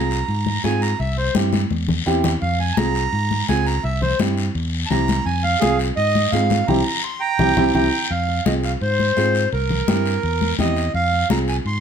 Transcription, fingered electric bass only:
0, 0, Header, 1, 2, 480
1, 0, Start_track
1, 0, Key_signature, -4, "minor"
1, 0, Tempo, 355240
1, 1348, Time_signature, 4, 2, 24, 8
1, 15946, End_track
2, 0, Start_track
2, 0, Title_t, "Fingered electric bass"
2, 0, Program_c, 0, 33
2, 0, Note_on_c, 0, 36, 88
2, 291, Note_off_c, 0, 36, 0
2, 384, Note_on_c, 0, 44, 79
2, 770, Note_off_c, 0, 44, 0
2, 868, Note_on_c, 0, 44, 89
2, 1252, Note_off_c, 0, 44, 0
2, 1347, Note_on_c, 0, 36, 86
2, 1732, Note_off_c, 0, 36, 0
2, 1828, Note_on_c, 0, 43, 90
2, 2212, Note_off_c, 0, 43, 0
2, 2309, Note_on_c, 0, 40, 81
2, 2693, Note_off_c, 0, 40, 0
2, 2791, Note_on_c, 0, 40, 88
2, 3175, Note_off_c, 0, 40, 0
2, 3271, Note_on_c, 0, 41, 93
2, 3655, Note_off_c, 0, 41, 0
2, 3749, Note_on_c, 0, 36, 84
2, 4133, Note_off_c, 0, 36, 0
2, 4226, Note_on_c, 0, 44, 92
2, 4612, Note_off_c, 0, 44, 0
2, 4714, Note_on_c, 0, 37, 97
2, 5097, Note_off_c, 0, 37, 0
2, 5187, Note_on_c, 0, 36, 89
2, 5572, Note_off_c, 0, 36, 0
2, 5669, Note_on_c, 0, 43, 80
2, 6054, Note_off_c, 0, 43, 0
2, 6147, Note_on_c, 0, 40, 85
2, 6533, Note_off_c, 0, 40, 0
2, 6626, Note_on_c, 0, 36, 102
2, 7012, Note_off_c, 0, 36, 0
2, 7103, Note_on_c, 0, 41, 94
2, 7490, Note_off_c, 0, 41, 0
2, 7589, Note_on_c, 0, 36, 89
2, 7974, Note_off_c, 0, 36, 0
2, 8068, Note_on_c, 0, 44, 81
2, 8454, Note_off_c, 0, 44, 0
2, 8546, Note_on_c, 0, 44, 94
2, 8932, Note_off_c, 0, 44, 0
2, 9034, Note_on_c, 0, 36, 95
2, 9211, Note_off_c, 0, 36, 0
2, 9990, Note_on_c, 0, 36, 88
2, 10169, Note_off_c, 0, 36, 0
2, 10231, Note_on_c, 0, 36, 98
2, 10410, Note_off_c, 0, 36, 0
2, 10471, Note_on_c, 0, 36, 88
2, 10650, Note_off_c, 0, 36, 0
2, 10952, Note_on_c, 0, 41, 92
2, 11336, Note_off_c, 0, 41, 0
2, 11432, Note_on_c, 0, 36, 78
2, 11816, Note_off_c, 0, 36, 0
2, 11909, Note_on_c, 0, 44, 80
2, 12294, Note_off_c, 0, 44, 0
2, 12392, Note_on_c, 0, 44, 89
2, 12776, Note_off_c, 0, 44, 0
2, 12872, Note_on_c, 0, 36, 89
2, 13256, Note_off_c, 0, 36, 0
2, 13347, Note_on_c, 0, 43, 83
2, 13733, Note_off_c, 0, 43, 0
2, 13830, Note_on_c, 0, 40, 87
2, 14214, Note_off_c, 0, 40, 0
2, 14310, Note_on_c, 0, 40, 93
2, 14693, Note_off_c, 0, 40, 0
2, 14784, Note_on_c, 0, 41, 83
2, 15170, Note_off_c, 0, 41, 0
2, 15266, Note_on_c, 0, 36, 82
2, 15650, Note_off_c, 0, 36, 0
2, 15746, Note_on_c, 0, 44, 79
2, 15946, Note_off_c, 0, 44, 0
2, 15946, End_track
0, 0, End_of_file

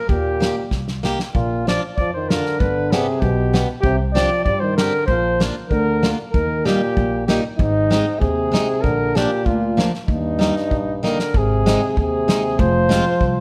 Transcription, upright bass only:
0, 0, Header, 1, 2, 480
1, 0, Start_track
1, 0, Key_signature, -3, "major"
1, 0, Tempo, 624350
1, 70, Time_signature, 2, 2, 24, 8
1, 10304, End_track
2, 0, Start_track
2, 0, Title_t, "Upright bass"
2, 0, Program_c, 0, 32
2, 71, Note_on_c, 0, 39, 88
2, 383, Note_off_c, 0, 39, 0
2, 548, Note_on_c, 0, 36, 66
2, 866, Note_off_c, 0, 36, 0
2, 1037, Note_on_c, 0, 34, 85
2, 1353, Note_off_c, 0, 34, 0
2, 1519, Note_on_c, 0, 41, 60
2, 1832, Note_off_c, 0, 41, 0
2, 2004, Note_on_c, 0, 31, 91
2, 2312, Note_off_c, 0, 31, 0
2, 2476, Note_on_c, 0, 35, 83
2, 2783, Note_off_c, 0, 35, 0
2, 2949, Note_on_c, 0, 36, 76
2, 3259, Note_off_c, 0, 36, 0
2, 3426, Note_on_c, 0, 43, 85
2, 3737, Note_off_c, 0, 43, 0
2, 3904, Note_on_c, 0, 34, 85
2, 4219, Note_off_c, 0, 34, 0
2, 4389, Note_on_c, 0, 38, 67
2, 4706, Note_off_c, 0, 38, 0
2, 4876, Note_on_c, 0, 39, 78
2, 5190, Note_off_c, 0, 39, 0
2, 5358, Note_on_c, 0, 34, 82
2, 5668, Note_off_c, 0, 34, 0
2, 5837, Note_on_c, 0, 32, 96
2, 6148, Note_off_c, 0, 32, 0
2, 6315, Note_on_c, 0, 39, 84
2, 6626, Note_off_c, 0, 39, 0
2, 6793, Note_on_c, 0, 34, 81
2, 7104, Note_off_c, 0, 34, 0
2, 7272, Note_on_c, 0, 38, 72
2, 7583, Note_off_c, 0, 38, 0
2, 7752, Note_on_c, 0, 39, 84
2, 8066, Note_off_c, 0, 39, 0
2, 8235, Note_on_c, 0, 34, 65
2, 8551, Note_off_c, 0, 34, 0
2, 8722, Note_on_c, 0, 32, 85
2, 9034, Note_off_c, 0, 32, 0
2, 9201, Note_on_c, 0, 39, 79
2, 9682, Note_on_c, 0, 29, 99
2, 9694, Note_off_c, 0, 39, 0
2, 9988, Note_off_c, 0, 29, 0
2, 10154, Note_on_c, 0, 36, 70
2, 10304, Note_off_c, 0, 36, 0
2, 10304, End_track
0, 0, End_of_file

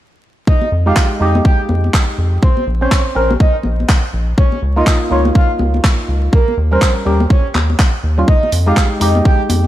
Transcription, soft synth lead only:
0, 0, Header, 1, 2, 480
1, 0, Start_track
1, 0, Tempo, 487805
1, 467, Time_signature, 4, 2, 24, 8
1, 9517, End_track
2, 0, Start_track
2, 0, Title_t, "Soft synth lead"
2, 0, Program_c, 0, 80
2, 466, Note_on_c, 0, 75, 99
2, 680, Note_off_c, 0, 75, 0
2, 852, Note_on_c, 0, 77, 90
2, 1052, Note_off_c, 0, 77, 0
2, 1187, Note_on_c, 0, 75, 89
2, 1346, Note_off_c, 0, 75, 0
2, 1426, Note_on_c, 0, 79, 89
2, 1586, Note_off_c, 0, 79, 0
2, 2387, Note_on_c, 0, 72, 97
2, 2601, Note_off_c, 0, 72, 0
2, 2772, Note_on_c, 0, 73, 89
2, 2972, Note_off_c, 0, 73, 0
2, 3108, Note_on_c, 0, 72, 92
2, 3267, Note_off_c, 0, 72, 0
2, 3346, Note_on_c, 0, 75, 88
2, 3506, Note_off_c, 0, 75, 0
2, 4308, Note_on_c, 0, 73, 97
2, 4521, Note_off_c, 0, 73, 0
2, 4691, Note_on_c, 0, 75, 89
2, 4891, Note_off_c, 0, 75, 0
2, 5027, Note_on_c, 0, 73, 89
2, 5186, Note_off_c, 0, 73, 0
2, 5267, Note_on_c, 0, 77, 91
2, 5426, Note_off_c, 0, 77, 0
2, 6227, Note_on_c, 0, 70, 95
2, 6441, Note_off_c, 0, 70, 0
2, 6612, Note_on_c, 0, 72, 92
2, 6812, Note_off_c, 0, 72, 0
2, 6946, Note_on_c, 0, 70, 90
2, 7106, Note_off_c, 0, 70, 0
2, 7185, Note_on_c, 0, 73, 89
2, 7345, Note_off_c, 0, 73, 0
2, 8143, Note_on_c, 0, 75, 97
2, 8359, Note_off_c, 0, 75, 0
2, 8531, Note_on_c, 0, 77, 94
2, 8731, Note_off_c, 0, 77, 0
2, 8864, Note_on_c, 0, 75, 87
2, 9025, Note_off_c, 0, 75, 0
2, 9106, Note_on_c, 0, 79, 87
2, 9266, Note_off_c, 0, 79, 0
2, 9517, End_track
0, 0, End_of_file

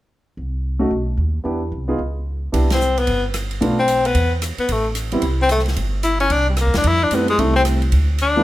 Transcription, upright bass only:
0, 0, Header, 1, 3, 480
1, 0, Start_track
1, 0, Key_signature, 0, "major"
1, 0, Tempo, 270149
1, 652, Time_signature, 4, 2, 24, 8
1, 14986, End_track
2, 0, Start_track
2, 0, Title_t, "Upright bass"
2, 0, Program_c, 0, 32
2, 663, Note_on_c, 0, 36, 64
2, 1571, Note_off_c, 0, 36, 0
2, 1613, Note_on_c, 0, 35, 70
2, 2060, Note_off_c, 0, 35, 0
2, 2085, Note_on_c, 0, 39, 70
2, 2536, Note_off_c, 0, 39, 0
2, 2577, Note_on_c, 0, 40, 67
2, 3023, Note_off_c, 0, 40, 0
2, 3053, Note_on_c, 0, 36, 74
2, 3500, Note_off_c, 0, 36, 0
2, 3528, Note_on_c, 0, 37, 68
2, 4444, Note_off_c, 0, 37, 0
2, 4506, Note_on_c, 0, 36, 74
2, 5413, Note_off_c, 0, 36, 0
2, 5460, Note_on_c, 0, 31, 73
2, 6369, Note_off_c, 0, 31, 0
2, 6428, Note_on_c, 0, 35, 67
2, 7333, Note_off_c, 0, 35, 0
2, 7370, Note_on_c, 0, 40, 75
2, 8091, Note_off_c, 0, 40, 0
2, 8339, Note_on_c, 0, 33, 80
2, 9248, Note_off_c, 0, 33, 0
2, 9276, Note_on_c, 0, 36, 80
2, 10196, Note_off_c, 0, 36, 0
2, 10246, Note_on_c, 0, 31, 77
2, 11161, Note_off_c, 0, 31, 0
2, 11199, Note_on_c, 0, 36, 79
2, 11800, Note_off_c, 0, 36, 0
2, 11845, Note_on_c, 0, 38, 56
2, 11985, Note_off_c, 0, 38, 0
2, 11996, Note_on_c, 0, 40, 63
2, 12152, Note_off_c, 0, 40, 0
2, 12161, Note_on_c, 0, 41, 71
2, 12612, Note_off_c, 0, 41, 0
2, 12632, Note_on_c, 0, 42, 73
2, 13087, Note_off_c, 0, 42, 0
2, 13130, Note_on_c, 0, 36, 83
2, 14041, Note_off_c, 0, 36, 0
2, 14078, Note_on_c, 0, 38, 83
2, 14986, Note_off_c, 0, 38, 0
2, 14986, End_track
3, 0, Start_track
3, 0, Title_t, "Muted upright bass strokes"
3, 8137, Note_on_c, 9, 29, 37
3, 8315, Note_off_c, 9, 29, 0
3, 14986, End_track
0, 0, End_of_file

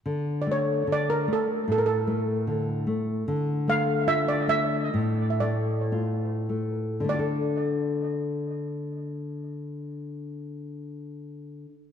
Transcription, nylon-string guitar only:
0, 0, Header, 1, 2, 480
1, 0, Start_track
1, 0, Key_signature, -1, "minor"
1, 0, Tempo, 819672
1, 33, Time_signature, 2, 2, 24, 8
1, 993, Tempo, 790514
1, 2433, Tempo, 855920
1, 2913, Tempo, 981997
1, 3393, Tempo, 1169591
1, 3873, Tempo, 1221996
1, 5776, End_track
2, 0, Start_track
2, 0, Title_t, "Nylon-string guitar"
2, 0, Program_c, 0, 24
2, 33, Note_on_c, 0, 50, 46
2, 274, Note_on_c, 0, 57, 43
2, 503, Note_off_c, 0, 50, 0
2, 510, Note_off_c, 0, 57, 0
2, 510, Note_on_c, 0, 50, 43
2, 746, Note_off_c, 0, 50, 0
2, 747, Note_on_c, 0, 57, 43
2, 980, Note_off_c, 0, 57, 0
2, 982, Note_on_c, 0, 45, 53
2, 1222, Note_on_c, 0, 57, 50
2, 1460, Note_off_c, 0, 57, 0
2, 1465, Note_on_c, 0, 50, 50
2, 1699, Note_off_c, 0, 50, 0
2, 1704, Note_on_c, 0, 57, 47
2, 1918, Note_off_c, 0, 45, 0
2, 1938, Note_off_c, 0, 57, 0
2, 1953, Note_on_c, 0, 50, 62
2, 2195, Note_on_c, 0, 57, 50
2, 2429, Note_off_c, 0, 57, 0
2, 2435, Note_on_c, 0, 65, 46
2, 2660, Note_off_c, 0, 65, 0
2, 2662, Note_on_c, 0, 57, 47
2, 2892, Note_off_c, 0, 50, 0
2, 2903, Note_off_c, 0, 57, 0
2, 2920, Note_on_c, 0, 45, 55
2, 3148, Note_on_c, 0, 57, 46
2, 3388, Note_off_c, 0, 57, 0
2, 3400, Note_on_c, 0, 65, 47
2, 3619, Note_off_c, 0, 65, 0
2, 3634, Note_on_c, 0, 57, 41
2, 3843, Note_on_c, 0, 50, 46
2, 3855, Note_off_c, 0, 57, 0
2, 3859, Note_off_c, 0, 45, 0
2, 3860, Note_on_c, 0, 57, 40
2, 3879, Note_on_c, 0, 62, 43
2, 3898, Note_on_c, 0, 65, 41
2, 3917, Note_off_c, 0, 65, 0
2, 3918, Note_on_c, 0, 69, 48
2, 5670, Note_off_c, 0, 50, 0
2, 5687, Note_off_c, 0, 57, 0
2, 5705, Note_off_c, 0, 62, 0
2, 5744, Note_off_c, 0, 69, 0
2, 5776, End_track
0, 0, End_of_file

